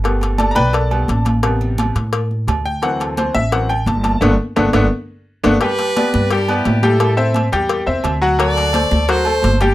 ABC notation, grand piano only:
X:1
M:4/4
L:1/8
Q:1/4=172
K:G
V:1 name="Grand piano"
z2 [Ada] [Bdg_b=b] [Ada]3 z | z6 z g | f A c e f g a a | [A,B,D] z [A,B,D] [A,B,D] z3 [A,B,D] |
[G,Gg]2 [B,Bd]2 [G,Gg] [B,Bd]2 [G,Gg]- | [G,Gg] [Cce]2 [G,Gg]2 [Cce]2 [F,Ff] | [F,Ff]2 [A,Ac]2 [F,Ff] [A,Ac]2 [G,Gg] |]
V:2 name="Grand piano" clef=bass
[G,A,B,]3 z2 [G,A,B,] z2 | [C,G,B,]3 z4 z | [E,F,C]3 z [E,F,C] z3 | z8 |
z8 | z8 | z8 |]